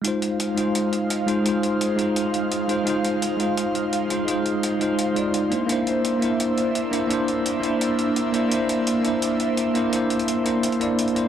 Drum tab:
HH |x-x-x-x-x-x-x-x-|x-x-x-x-x-x-x-x-|x-x-x-x-x-x-x-x-|x-x-x-x-x-x-x-x-|

HH |x-x-x-x-x-x-x-x-|x-x-x-x-x-x-x-x-|x-x-x-x-x-x-x-x-|x-xxx-x-xxx-xxx-|